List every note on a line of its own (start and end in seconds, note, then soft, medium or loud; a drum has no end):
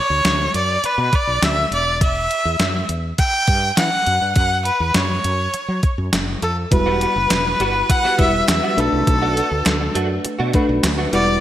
0.00 0.55 C#5 medium
0.10 0.21 D2 medium
0.25 0.47 D2 medium
0.25 snare loud
0.25 closed hi-hat medium
0.54 0.76 F#2 medium
0.54 0.87 D5 medium
0.54 closed hi-hat medium
0.84 1.17 B4 medium
0.84 muted fretless electric bass stroke soft
0.84 closed hi-hat medium
0.98 1.09 B2 medium
1.13 1.46 D5 medium
1.13 kick medium
1.13 closed hi-hat medium
1.27 1.38 B1 medium
1.42 1.64 D2 medium
1.42 1.73 E5 medium
1.42 snare loud
1.42 closed hi-hat medium
1.71 2.27 E1 medium
1.71 2.00 D5 medium
1.71 closed hi-hat medium
2.01 2.87 E5 medium
2.01 kick medium
2.01 closed hi-hat medium
2.31 closed hi-hat medium
2.45 2.56 E2 medium
2.60 2.82 F#2 medium
2.60 snare medium
2.60 closed hi-hat medium
2.89 3.11 E2 medium
2.89 closed hi-hat medium
3.18 3.74 G5 loud
3.18 kick medium
3.18 closed hi-hat medium
3.47 3.70 G2 medium
3.47 kick medium
3.47 closed hi-hat medium
3.77 3.88 E3 medium
3.77 4.33 F#5 medium
3.77 snare loud
3.77 closed hi-hat loud
4.06 4.18 F#2 medium
4.06 closed hi-hat medium
4.21 4.33 G2 medium
4.36 4.69 F#2 medium
4.36 4.64 F#5 medium
4.36 kick medium
4.36 closed hi-hat medium
4.65 4.96 B4 medium
4.65 closed hi-hat medium
4.80 4.91 E2 medium
4.94 5.17 F#2 medium
4.94 5.83 C#5 medium
4.94 snare medium
4.94 closed hi-hat medium
5.24 5.47 F#2 medium
5.24 closed hi-hat medium
5.54 muted fretless electric bass stroke soft
5.54 closed hi-hat medium
5.68 5.80 F#3 medium
5.83 kick medium
5.83 closed hi-hat medium
5.98 6.09 F#2 medium
6.13 6.35 F#1 medium
6.13 snare loud
6.13 closed hi-hat medium
6.42 6.64 F2 medium
6.42 6.56 A4 medium
6.42 closed hi-hat medium
6.71 7.05 E1 loud
6.71 7.74 G3 medium
6.71 7.74 E4 medium
6.71 7.74 F#4 medium
6.71 7.74 B4 medium
6.71 7.92 B4 medium
6.71 muted clean electric guitar stroke soft
6.71 kick medium
6.71 closed hi-hat medium
6.86 7.00 G3 medium
6.86 7.00 B3 medium
6.86 7.00 F#4 medium
7.01 7.12 G3 medium
7.01 7.12 B3 medium
7.01 7.12 F#4 medium
7.01 closed hi-hat medium
7.16 7.27 F#1 medium
7.16 muted clean electric guitar stroke soft
7.30 7.53 E1 medium
7.30 snare loud
7.30 clap medium
7.30 closed hi-hat loud
7.45 muted clean electric guitar stroke soft
7.60 7.82 G1 medium
7.60 7.74 G3 medium
7.60 7.74 B3 medium
7.60 7.74 F#4 medium
7.60 closed hi-hat medium
7.75 muted clean electric guitar stroke soft
7.90 8.19 F#5 medium
7.90 muted clean electric guitar stroke soft
7.90 kick medium
7.90 closed hi-hat medium
8.04 8.18 G3 medium
8.04 8.18 B3 medium
8.04 8.18 F#4 medium
8.18 8.41 E1 medium
8.18 8.77 G3 medium
8.18 8.29 G3 medium
8.18 8.30 B3 medium
8.18 8.78 E4 medium
8.18 8.76 F#4 medium
8.18 8.30 F#4 medium
8.18 8.77 B4 medium
8.18 8.47 E5 medium
8.18 kick medium
8.18 closed hi-hat medium
8.34 muted clean electric guitar stroke soft
8.48 8.60 E2 medium
8.48 8.81 E5 medium
8.48 muted clean electric guitar stroke soft
8.48 snare loud
8.48 clap medium
8.48 closed hi-hat medium
8.63 8.77 G3 medium
8.63 8.77 B3 medium
8.63 8.77 F#4 medium
8.77 8.89 B1 medium
8.77 9.79 A3 medium
8.77 9.80 D4 medium
8.77 9.80 F#4 medium
8.77 9.96 A4 medium
8.77 9.80 B4 medium
8.77 muted clean electric guitar stroke soft
8.77 closed hi-hat medium
8.92 9.04 C2 medium
8.92 muted clean electric guitar stroke soft
9.07 9.40 B1 medium
9.07 muted clean electric guitar stroke soft
9.07 kick medium
9.07 closed hi-hat medium
9.22 9.35 A3 medium
9.22 9.36 D4 medium
9.22 9.35 F#4 medium
9.36 9.47 A3 medium
9.36 9.47 D4 medium
9.36 9.48 F#4 medium
9.36 closed hi-hat medium
9.51 9.62 D2 medium
9.51 muted clean electric guitar stroke soft
9.66 9.88 D2 medium
9.66 snare loud
9.66 clap medium
9.66 closed hi-hat loud
9.80 muted clean electric guitar stroke soft
9.95 10.17 F#2 medium
9.95 10.09 A3 medium
9.95 10.09 D4 medium
9.95 10.08 F#4 medium
9.95 closed hi-hat medium
10.10 muted clean electric guitar stroke soft
10.24 muted clean electric guitar stroke soft
10.24 muted fretless electric bass stroke soft
10.24 closed hi-hat medium
10.39 10.51 B2 medium
10.39 10.52 A3 medium
10.39 10.53 D4 medium
10.39 10.53 F#4 medium
10.53 10.65 A3 medium
10.53 11.13 A3 medium
10.53 11.13 D4 medium
10.53 10.65 D4 medium
10.53 11.13 F#4 medium
10.53 10.65 F#4 medium
10.53 11.13 B4 medium
10.53 kick medium
10.53 closed hi-hat medium
10.69 10.80 B1 medium
10.69 muted clean electric guitar stroke soft
10.83 11.06 D2 medium
10.83 muted clean electric guitar stroke soft
10.83 snare loud
10.83 clap medium
10.83 closed hi-hat medium
10.98 11.09 A3 medium
10.98 11.09 D4 medium
10.98 11.09 F#4 medium
11.12 11.40 E1 medium
11.12 11.26 G3 medium
11.12 11.40 G3 medium
11.12 11.27 B3 medium
11.12 11.40 E4 medium
11.12 11.26 F#4 medium
11.12 11.40 F#4 medium
11.12 11.40 B4 medium
11.12 11.40 D5 medium
11.12 closed hi-hat medium
11.27 muted clean electric guitar stroke soft